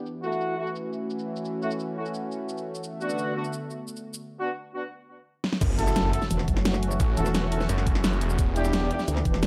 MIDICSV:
0, 0, Header, 1, 7, 480
1, 0, Start_track
1, 0, Tempo, 346821
1, 87, Time_signature, 4, 2, 24, 8
1, 13102, End_track
2, 0, Start_track
2, 0, Title_t, "Brass ensemble"
2, 0, Program_c, 0, 61
2, 328, Note_on_c, 0, 57, 96
2, 328, Note_on_c, 0, 64, 84
2, 328, Note_on_c, 0, 66, 105
2, 779, Note_off_c, 0, 57, 0
2, 779, Note_off_c, 0, 64, 0
2, 779, Note_off_c, 0, 66, 0
2, 807, Note_on_c, 0, 57, 91
2, 807, Note_on_c, 0, 64, 84
2, 807, Note_on_c, 0, 66, 105
2, 928, Note_off_c, 0, 57, 0
2, 928, Note_off_c, 0, 64, 0
2, 928, Note_off_c, 0, 66, 0
2, 2247, Note_on_c, 0, 57, 86
2, 2248, Note_on_c, 0, 64, 81
2, 2248, Note_on_c, 0, 66, 96
2, 2369, Note_off_c, 0, 57, 0
2, 2369, Note_off_c, 0, 64, 0
2, 2369, Note_off_c, 0, 66, 0
2, 2727, Note_on_c, 0, 57, 78
2, 2727, Note_on_c, 0, 64, 71
2, 2727, Note_on_c, 0, 66, 86
2, 2848, Note_off_c, 0, 66, 0
2, 2849, Note_off_c, 0, 57, 0
2, 2849, Note_off_c, 0, 64, 0
2, 4167, Note_on_c, 0, 59, 95
2, 4167, Note_on_c, 0, 62, 90
2, 4167, Note_on_c, 0, 66, 105
2, 4619, Note_off_c, 0, 59, 0
2, 4619, Note_off_c, 0, 62, 0
2, 4619, Note_off_c, 0, 66, 0
2, 4648, Note_on_c, 0, 59, 91
2, 4648, Note_on_c, 0, 62, 86
2, 4648, Note_on_c, 0, 66, 104
2, 4769, Note_off_c, 0, 59, 0
2, 4769, Note_off_c, 0, 62, 0
2, 4769, Note_off_c, 0, 66, 0
2, 6087, Note_on_c, 0, 59, 86
2, 6087, Note_on_c, 0, 62, 80
2, 6087, Note_on_c, 0, 66, 97
2, 6208, Note_off_c, 0, 59, 0
2, 6208, Note_off_c, 0, 62, 0
2, 6208, Note_off_c, 0, 66, 0
2, 6567, Note_on_c, 0, 59, 76
2, 6567, Note_on_c, 0, 62, 71
2, 6567, Note_on_c, 0, 66, 88
2, 6688, Note_off_c, 0, 59, 0
2, 6689, Note_off_c, 0, 62, 0
2, 6689, Note_off_c, 0, 66, 0
2, 8007, Note_on_c, 0, 64, 96
2, 8007, Note_on_c, 0, 66, 93
2, 8007, Note_on_c, 0, 69, 107
2, 8458, Note_off_c, 0, 64, 0
2, 8459, Note_off_c, 0, 66, 0
2, 8459, Note_off_c, 0, 69, 0
2, 8487, Note_on_c, 0, 64, 97
2, 8487, Note_on_c, 0, 66, 88
2, 8487, Note_on_c, 0, 69, 109
2, 8608, Note_off_c, 0, 64, 0
2, 8608, Note_off_c, 0, 66, 0
2, 8608, Note_off_c, 0, 69, 0
2, 9927, Note_on_c, 0, 64, 90
2, 9927, Note_on_c, 0, 66, 84
2, 9927, Note_on_c, 0, 69, 101
2, 10049, Note_off_c, 0, 64, 0
2, 10049, Note_off_c, 0, 66, 0
2, 10049, Note_off_c, 0, 69, 0
2, 10407, Note_on_c, 0, 64, 82
2, 10407, Note_on_c, 0, 66, 73
2, 10407, Note_on_c, 0, 69, 89
2, 10528, Note_off_c, 0, 64, 0
2, 10528, Note_off_c, 0, 69, 0
2, 10529, Note_off_c, 0, 66, 0
2, 11847, Note_on_c, 0, 62, 97
2, 11847, Note_on_c, 0, 64, 92
2, 11847, Note_on_c, 0, 67, 108
2, 12298, Note_off_c, 0, 62, 0
2, 12298, Note_off_c, 0, 64, 0
2, 12298, Note_off_c, 0, 67, 0
2, 12327, Note_on_c, 0, 62, 96
2, 12327, Note_on_c, 0, 64, 90
2, 12327, Note_on_c, 0, 67, 106
2, 12449, Note_off_c, 0, 62, 0
2, 12449, Note_off_c, 0, 64, 0
2, 12449, Note_off_c, 0, 67, 0
2, 13102, End_track
3, 0, Start_track
3, 0, Title_t, "Analog synth pad"
3, 0, Program_c, 1, 89
3, 87, Note_on_c, 1, 52, 79
3, 87, Note_on_c, 1, 57, 71
3, 87, Note_on_c, 1, 61, 75
3, 87, Note_on_c, 1, 66, 90
3, 3889, Note_off_c, 1, 52, 0
3, 3889, Note_off_c, 1, 57, 0
3, 3889, Note_off_c, 1, 61, 0
3, 3927, Note_on_c, 1, 50, 79
3, 3928, Note_on_c, 1, 57, 72
3, 3928, Note_on_c, 1, 59, 73
3, 5792, Note_off_c, 1, 66, 0
3, 5828, Note_off_c, 1, 50, 0
3, 5828, Note_off_c, 1, 57, 0
3, 5829, Note_off_c, 1, 59, 0
3, 7767, Note_on_c, 1, 57, 76
3, 7767, Note_on_c, 1, 61, 75
3, 7768, Note_on_c, 1, 52, 82
3, 7768, Note_on_c, 1, 66, 92
3, 11569, Note_off_c, 1, 57, 0
3, 11569, Note_off_c, 1, 61, 0
3, 11569, Note_off_c, 1, 66, 0
3, 11607, Note_on_c, 1, 59, 75
3, 11607, Note_on_c, 1, 62, 75
3, 11607, Note_on_c, 1, 67, 91
3, 13102, Note_off_c, 1, 52, 0
3, 13102, Note_off_c, 1, 59, 0
3, 13102, Note_off_c, 1, 62, 0
3, 13102, Note_off_c, 1, 67, 0
3, 13102, End_track
4, 0, Start_track
4, 0, Title_t, "Detuned saw bass"
4, 0, Program_c, 2, 39
4, 7767, Note_on_c, 2, 30, 96
4, 8468, Note_off_c, 2, 30, 0
4, 9687, Note_on_c, 2, 33, 93
4, 9908, Note_off_c, 2, 33, 0
4, 10647, Note_on_c, 2, 30, 96
4, 11348, Note_off_c, 2, 30, 0
4, 11367, Note_on_c, 2, 28, 101
4, 11588, Note_off_c, 2, 28, 0
4, 11606, Note_on_c, 2, 28, 93
4, 12308, Note_off_c, 2, 28, 0
4, 13102, End_track
5, 0, Start_track
5, 0, Title_t, "Wobble bass"
5, 0, Program_c, 3, 39
5, 8728, Note_on_c, 3, 28, 98
5, 8948, Note_off_c, 3, 28, 0
5, 8967, Note_on_c, 3, 30, 97
5, 9668, Note_off_c, 3, 30, 0
5, 9927, Note_on_c, 3, 28, 97
5, 10628, Note_off_c, 3, 28, 0
5, 12567, Note_on_c, 3, 38, 99
5, 12788, Note_off_c, 3, 38, 0
5, 12807, Note_on_c, 3, 28, 97
5, 13102, Note_off_c, 3, 28, 0
5, 13102, End_track
6, 0, Start_track
6, 0, Title_t, "Impact"
6, 0, Program_c, 4, 103
6, 7767, Note_on_c, 4, 60, 77
6, 9687, Note_off_c, 4, 60, 0
6, 13102, End_track
7, 0, Start_track
7, 0, Title_t, "Drums"
7, 87, Note_on_c, 9, 69, 48
7, 226, Note_off_c, 9, 69, 0
7, 328, Note_on_c, 9, 69, 27
7, 448, Note_off_c, 9, 69, 0
7, 448, Note_on_c, 9, 69, 58
7, 568, Note_off_c, 9, 69, 0
7, 568, Note_on_c, 9, 69, 46
7, 707, Note_off_c, 9, 69, 0
7, 928, Note_on_c, 9, 69, 27
7, 1048, Note_off_c, 9, 69, 0
7, 1048, Note_on_c, 9, 69, 49
7, 1187, Note_off_c, 9, 69, 0
7, 1288, Note_on_c, 9, 69, 27
7, 1427, Note_off_c, 9, 69, 0
7, 1528, Note_on_c, 9, 69, 47
7, 1648, Note_off_c, 9, 69, 0
7, 1648, Note_on_c, 9, 69, 26
7, 1786, Note_off_c, 9, 69, 0
7, 1888, Note_on_c, 9, 69, 55
7, 2008, Note_off_c, 9, 69, 0
7, 2008, Note_on_c, 9, 69, 50
7, 2146, Note_off_c, 9, 69, 0
7, 2247, Note_on_c, 9, 69, 27
7, 2367, Note_off_c, 9, 69, 0
7, 2367, Note_on_c, 9, 69, 59
7, 2488, Note_off_c, 9, 69, 0
7, 2488, Note_on_c, 9, 69, 48
7, 2627, Note_off_c, 9, 69, 0
7, 2848, Note_on_c, 9, 69, 28
7, 2968, Note_off_c, 9, 69, 0
7, 2968, Note_on_c, 9, 69, 52
7, 3107, Note_off_c, 9, 69, 0
7, 3208, Note_on_c, 9, 69, 28
7, 3346, Note_off_c, 9, 69, 0
7, 3447, Note_on_c, 9, 69, 50
7, 3568, Note_off_c, 9, 69, 0
7, 3568, Note_on_c, 9, 69, 27
7, 3706, Note_off_c, 9, 69, 0
7, 3807, Note_on_c, 9, 69, 58
7, 3927, Note_off_c, 9, 69, 0
7, 3927, Note_on_c, 9, 69, 51
7, 4065, Note_off_c, 9, 69, 0
7, 4168, Note_on_c, 9, 69, 28
7, 4287, Note_off_c, 9, 69, 0
7, 4287, Note_on_c, 9, 69, 60
7, 4407, Note_off_c, 9, 69, 0
7, 4407, Note_on_c, 9, 69, 50
7, 4546, Note_off_c, 9, 69, 0
7, 4767, Note_on_c, 9, 69, 28
7, 4888, Note_off_c, 9, 69, 0
7, 4888, Note_on_c, 9, 69, 50
7, 5027, Note_off_c, 9, 69, 0
7, 5128, Note_on_c, 9, 69, 28
7, 5267, Note_off_c, 9, 69, 0
7, 5368, Note_on_c, 9, 69, 50
7, 5488, Note_off_c, 9, 69, 0
7, 5488, Note_on_c, 9, 69, 27
7, 5627, Note_off_c, 9, 69, 0
7, 5728, Note_on_c, 9, 69, 61
7, 5867, Note_off_c, 9, 69, 0
7, 7528, Note_on_c, 9, 38, 60
7, 7648, Note_off_c, 9, 38, 0
7, 7648, Note_on_c, 9, 38, 72
7, 7767, Note_on_c, 9, 36, 123
7, 7769, Note_on_c, 9, 42, 100
7, 7769, Note_on_c, 9, 49, 106
7, 7769, Note_on_c, 9, 69, 51
7, 7786, Note_off_c, 9, 38, 0
7, 7906, Note_off_c, 9, 36, 0
7, 7907, Note_off_c, 9, 42, 0
7, 7907, Note_off_c, 9, 49, 0
7, 7907, Note_off_c, 9, 69, 0
7, 8009, Note_on_c, 9, 42, 67
7, 8009, Note_on_c, 9, 69, 28
7, 8128, Note_off_c, 9, 69, 0
7, 8128, Note_on_c, 9, 40, 35
7, 8128, Note_on_c, 9, 69, 59
7, 8147, Note_off_c, 9, 42, 0
7, 8248, Note_off_c, 9, 69, 0
7, 8248, Note_on_c, 9, 38, 115
7, 8248, Note_on_c, 9, 42, 94
7, 8248, Note_on_c, 9, 69, 49
7, 8267, Note_off_c, 9, 40, 0
7, 8386, Note_off_c, 9, 38, 0
7, 8386, Note_off_c, 9, 42, 0
7, 8386, Note_off_c, 9, 69, 0
7, 8488, Note_on_c, 9, 42, 71
7, 8608, Note_on_c, 9, 38, 38
7, 8608, Note_on_c, 9, 69, 28
7, 8627, Note_off_c, 9, 42, 0
7, 8728, Note_off_c, 9, 69, 0
7, 8728, Note_on_c, 9, 42, 101
7, 8728, Note_on_c, 9, 69, 50
7, 8747, Note_off_c, 9, 38, 0
7, 8848, Note_on_c, 9, 40, 35
7, 8866, Note_off_c, 9, 42, 0
7, 8866, Note_off_c, 9, 69, 0
7, 8967, Note_on_c, 9, 36, 107
7, 8968, Note_on_c, 9, 42, 70
7, 8968, Note_on_c, 9, 69, 28
7, 8986, Note_off_c, 9, 40, 0
7, 9088, Note_on_c, 9, 40, 50
7, 9106, Note_off_c, 9, 36, 0
7, 9107, Note_off_c, 9, 42, 0
7, 9107, Note_off_c, 9, 69, 0
7, 9208, Note_on_c, 9, 38, 118
7, 9208, Note_on_c, 9, 42, 97
7, 9208, Note_on_c, 9, 69, 50
7, 9227, Note_off_c, 9, 40, 0
7, 9328, Note_off_c, 9, 69, 0
7, 9328, Note_on_c, 9, 40, 37
7, 9328, Note_on_c, 9, 69, 26
7, 9347, Note_off_c, 9, 38, 0
7, 9347, Note_off_c, 9, 42, 0
7, 9448, Note_on_c, 9, 42, 71
7, 9466, Note_off_c, 9, 40, 0
7, 9466, Note_off_c, 9, 69, 0
7, 9568, Note_on_c, 9, 69, 59
7, 9587, Note_off_c, 9, 42, 0
7, 9687, Note_off_c, 9, 69, 0
7, 9687, Note_on_c, 9, 36, 127
7, 9687, Note_on_c, 9, 42, 95
7, 9687, Note_on_c, 9, 69, 49
7, 9825, Note_off_c, 9, 36, 0
7, 9826, Note_off_c, 9, 42, 0
7, 9826, Note_off_c, 9, 69, 0
7, 9927, Note_on_c, 9, 42, 65
7, 9927, Note_on_c, 9, 69, 26
7, 10047, Note_off_c, 9, 69, 0
7, 10047, Note_on_c, 9, 40, 36
7, 10047, Note_on_c, 9, 69, 59
7, 10066, Note_off_c, 9, 42, 0
7, 10167, Note_off_c, 9, 69, 0
7, 10167, Note_on_c, 9, 38, 120
7, 10167, Note_on_c, 9, 42, 89
7, 10167, Note_on_c, 9, 69, 47
7, 10186, Note_off_c, 9, 40, 0
7, 10305, Note_off_c, 9, 38, 0
7, 10305, Note_off_c, 9, 42, 0
7, 10305, Note_off_c, 9, 69, 0
7, 10406, Note_on_c, 9, 46, 79
7, 10527, Note_on_c, 9, 38, 38
7, 10527, Note_on_c, 9, 69, 27
7, 10545, Note_off_c, 9, 46, 0
7, 10647, Note_off_c, 9, 69, 0
7, 10647, Note_on_c, 9, 42, 95
7, 10647, Note_on_c, 9, 69, 49
7, 10665, Note_off_c, 9, 38, 0
7, 10767, Note_on_c, 9, 40, 34
7, 10785, Note_off_c, 9, 42, 0
7, 10785, Note_off_c, 9, 69, 0
7, 10887, Note_on_c, 9, 36, 111
7, 10887, Note_on_c, 9, 42, 67
7, 10887, Note_on_c, 9, 69, 27
7, 10905, Note_off_c, 9, 40, 0
7, 11007, Note_on_c, 9, 40, 50
7, 11025, Note_off_c, 9, 36, 0
7, 11025, Note_off_c, 9, 42, 0
7, 11025, Note_off_c, 9, 69, 0
7, 11127, Note_on_c, 9, 38, 122
7, 11127, Note_on_c, 9, 42, 94
7, 11127, Note_on_c, 9, 69, 49
7, 11145, Note_off_c, 9, 40, 0
7, 11247, Note_off_c, 9, 69, 0
7, 11247, Note_on_c, 9, 69, 26
7, 11265, Note_off_c, 9, 38, 0
7, 11265, Note_off_c, 9, 42, 0
7, 11367, Note_on_c, 9, 42, 70
7, 11386, Note_off_c, 9, 69, 0
7, 11486, Note_on_c, 9, 69, 57
7, 11506, Note_off_c, 9, 42, 0
7, 11607, Note_off_c, 9, 69, 0
7, 11607, Note_on_c, 9, 36, 127
7, 11607, Note_on_c, 9, 42, 89
7, 11607, Note_on_c, 9, 69, 47
7, 11745, Note_off_c, 9, 36, 0
7, 11746, Note_off_c, 9, 42, 0
7, 11746, Note_off_c, 9, 69, 0
7, 11847, Note_on_c, 9, 42, 63
7, 11847, Note_on_c, 9, 69, 26
7, 11967, Note_off_c, 9, 69, 0
7, 11967, Note_on_c, 9, 40, 34
7, 11967, Note_on_c, 9, 69, 56
7, 11985, Note_off_c, 9, 42, 0
7, 12087, Note_off_c, 9, 69, 0
7, 12087, Note_on_c, 9, 38, 122
7, 12087, Note_on_c, 9, 42, 90
7, 12087, Note_on_c, 9, 69, 46
7, 12106, Note_off_c, 9, 40, 0
7, 12226, Note_off_c, 9, 38, 0
7, 12226, Note_off_c, 9, 42, 0
7, 12226, Note_off_c, 9, 69, 0
7, 12326, Note_on_c, 9, 42, 65
7, 12447, Note_on_c, 9, 38, 40
7, 12447, Note_on_c, 9, 69, 27
7, 12465, Note_off_c, 9, 42, 0
7, 12567, Note_off_c, 9, 69, 0
7, 12567, Note_on_c, 9, 42, 91
7, 12567, Note_on_c, 9, 69, 48
7, 12585, Note_off_c, 9, 38, 0
7, 12687, Note_on_c, 9, 40, 34
7, 12705, Note_off_c, 9, 42, 0
7, 12705, Note_off_c, 9, 69, 0
7, 12807, Note_on_c, 9, 36, 112
7, 12807, Note_on_c, 9, 42, 65
7, 12807, Note_on_c, 9, 69, 28
7, 12826, Note_off_c, 9, 40, 0
7, 12927, Note_on_c, 9, 40, 49
7, 12945, Note_off_c, 9, 36, 0
7, 12946, Note_off_c, 9, 42, 0
7, 12946, Note_off_c, 9, 69, 0
7, 13047, Note_on_c, 9, 38, 124
7, 13047, Note_on_c, 9, 42, 91
7, 13047, Note_on_c, 9, 69, 47
7, 13066, Note_off_c, 9, 40, 0
7, 13102, Note_off_c, 9, 38, 0
7, 13102, Note_off_c, 9, 42, 0
7, 13102, Note_off_c, 9, 69, 0
7, 13102, End_track
0, 0, End_of_file